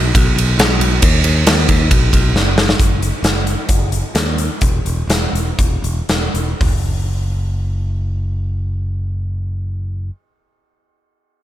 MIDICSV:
0, 0, Header, 1, 3, 480
1, 0, Start_track
1, 0, Tempo, 442152
1, 1114, Time_signature, 4, 2, 24, 8
1, 3516, Tempo, 461894
1, 5436, Tempo, 504202
1, 6876, Tempo, 530973
1, 11243, End_track
2, 0, Start_track
2, 0, Title_t, "Picked electric bass"
2, 0, Program_c, 0, 34
2, 0, Note_on_c, 0, 35, 101
2, 121, Note_off_c, 0, 35, 0
2, 163, Note_on_c, 0, 35, 107
2, 369, Note_off_c, 0, 35, 0
2, 380, Note_on_c, 0, 35, 85
2, 596, Note_off_c, 0, 35, 0
2, 627, Note_on_c, 0, 35, 98
2, 839, Note_off_c, 0, 35, 0
2, 856, Note_on_c, 0, 35, 94
2, 1073, Note_off_c, 0, 35, 0
2, 1111, Note_on_c, 0, 39, 104
2, 1321, Note_off_c, 0, 39, 0
2, 1350, Note_on_c, 0, 39, 94
2, 1561, Note_off_c, 0, 39, 0
2, 1590, Note_on_c, 0, 39, 96
2, 1801, Note_off_c, 0, 39, 0
2, 1832, Note_on_c, 0, 39, 100
2, 2042, Note_off_c, 0, 39, 0
2, 2078, Note_on_c, 0, 35, 91
2, 2285, Note_off_c, 0, 35, 0
2, 2311, Note_on_c, 0, 35, 95
2, 2521, Note_off_c, 0, 35, 0
2, 2544, Note_on_c, 0, 30, 91
2, 2967, Note_off_c, 0, 30, 0
2, 3034, Note_on_c, 0, 30, 87
2, 3378, Note_off_c, 0, 30, 0
2, 3502, Note_on_c, 0, 30, 76
2, 3840, Note_off_c, 0, 30, 0
2, 3987, Note_on_c, 0, 30, 79
2, 4323, Note_off_c, 0, 30, 0
2, 4460, Note_on_c, 0, 39, 79
2, 4804, Note_off_c, 0, 39, 0
2, 4955, Note_on_c, 0, 28, 85
2, 5125, Note_off_c, 0, 28, 0
2, 5194, Note_on_c, 0, 28, 83
2, 5369, Note_off_c, 0, 28, 0
2, 5423, Note_on_c, 0, 28, 79
2, 5593, Note_off_c, 0, 28, 0
2, 5669, Note_on_c, 0, 28, 80
2, 5835, Note_off_c, 0, 28, 0
2, 5919, Note_on_c, 0, 28, 80
2, 6082, Note_off_c, 0, 28, 0
2, 6137, Note_on_c, 0, 28, 73
2, 6310, Note_off_c, 0, 28, 0
2, 6393, Note_on_c, 0, 28, 70
2, 6564, Note_off_c, 0, 28, 0
2, 6631, Note_on_c, 0, 28, 70
2, 6807, Note_off_c, 0, 28, 0
2, 6885, Note_on_c, 0, 30, 79
2, 10034, Note_off_c, 0, 30, 0
2, 11243, End_track
3, 0, Start_track
3, 0, Title_t, "Drums"
3, 161, Note_on_c, 9, 36, 115
3, 167, Note_on_c, 9, 51, 115
3, 270, Note_off_c, 9, 36, 0
3, 275, Note_off_c, 9, 51, 0
3, 416, Note_on_c, 9, 51, 88
3, 525, Note_off_c, 9, 51, 0
3, 643, Note_on_c, 9, 51, 110
3, 650, Note_on_c, 9, 38, 112
3, 752, Note_off_c, 9, 51, 0
3, 759, Note_off_c, 9, 38, 0
3, 880, Note_on_c, 9, 51, 84
3, 988, Note_off_c, 9, 51, 0
3, 1109, Note_on_c, 9, 51, 127
3, 1116, Note_on_c, 9, 36, 119
3, 1218, Note_off_c, 9, 51, 0
3, 1225, Note_off_c, 9, 36, 0
3, 1346, Note_on_c, 9, 51, 78
3, 1454, Note_off_c, 9, 51, 0
3, 1591, Note_on_c, 9, 51, 113
3, 1598, Note_on_c, 9, 38, 120
3, 1700, Note_off_c, 9, 51, 0
3, 1706, Note_off_c, 9, 38, 0
3, 1830, Note_on_c, 9, 51, 82
3, 1833, Note_on_c, 9, 36, 84
3, 1939, Note_off_c, 9, 51, 0
3, 1941, Note_off_c, 9, 36, 0
3, 2074, Note_on_c, 9, 36, 114
3, 2074, Note_on_c, 9, 51, 112
3, 2182, Note_off_c, 9, 36, 0
3, 2183, Note_off_c, 9, 51, 0
3, 2312, Note_on_c, 9, 36, 83
3, 2316, Note_on_c, 9, 51, 82
3, 2421, Note_off_c, 9, 36, 0
3, 2425, Note_off_c, 9, 51, 0
3, 2560, Note_on_c, 9, 38, 71
3, 2669, Note_off_c, 9, 38, 0
3, 2798, Note_on_c, 9, 38, 107
3, 2907, Note_off_c, 9, 38, 0
3, 2921, Note_on_c, 9, 38, 96
3, 3030, Note_off_c, 9, 38, 0
3, 3034, Note_on_c, 9, 42, 81
3, 3035, Note_on_c, 9, 36, 110
3, 3142, Note_off_c, 9, 42, 0
3, 3143, Note_off_c, 9, 36, 0
3, 3284, Note_on_c, 9, 42, 56
3, 3393, Note_off_c, 9, 42, 0
3, 3517, Note_on_c, 9, 42, 73
3, 3523, Note_on_c, 9, 38, 99
3, 3621, Note_off_c, 9, 42, 0
3, 3627, Note_off_c, 9, 38, 0
3, 3754, Note_on_c, 9, 42, 55
3, 3858, Note_off_c, 9, 42, 0
3, 3982, Note_on_c, 9, 42, 82
3, 3985, Note_on_c, 9, 36, 96
3, 4086, Note_off_c, 9, 42, 0
3, 4089, Note_off_c, 9, 36, 0
3, 4226, Note_on_c, 9, 42, 62
3, 4330, Note_off_c, 9, 42, 0
3, 4463, Note_on_c, 9, 42, 82
3, 4469, Note_on_c, 9, 38, 110
3, 4567, Note_off_c, 9, 42, 0
3, 4573, Note_off_c, 9, 38, 0
3, 4705, Note_on_c, 9, 42, 59
3, 4809, Note_off_c, 9, 42, 0
3, 4941, Note_on_c, 9, 42, 84
3, 4948, Note_on_c, 9, 36, 112
3, 5045, Note_off_c, 9, 42, 0
3, 5052, Note_off_c, 9, 36, 0
3, 5200, Note_on_c, 9, 42, 51
3, 5304, Note_off_c, 9, 42, 0
3, 5446, Note_on_c, 9, 42, 74
3, 5451, Note_on_c, 9, 38, 99
3, 5541, Note_off_c, 9, 42, 0
3, 5547, Note_off_c, 9, 38, 0
3, 5691, Note_on_c, 9, 42, 54
3, 5786, Note_off_c, 9, 42, 0
3, 5913, Note_on_c, 9, 36, 97
3, 5913, Note_on_c, 9, 42, 66
3, 6008, Note_off_c, 9, 36, 0
3, 6008, Note_off_c, 9, 42, 0
3, 6154, Note_on_c, 9, 42, 51
3, 6249, Note_off_c, 9, 42, 0
3, 6390, Note_on_c, 9, 42, 68
3, 6396, Note_on_c, 9, 38, 98
3, 6486, Note_off_c, 9, 42, 0
3, 6491, Note_off_c, 9, 38, 0
3, 6636, Note_on_c, 9, 42, 51
3, 6731, Note_off_c, 9, 42, 0
3, 6884, Note_on_c, 9, 36, 82
3, 6887, Note_on_c, 9, 43, 81
3, 6887, Note_on_c, 9, 46, 71
3, 6974, Note_off_c, 9, 36, 0
3, 6978, Note_off_c, 9, 43, 0
3, 6978, Note_off_c, 9, 46, 0
3, 11243, End_track
0, 0, End_of_file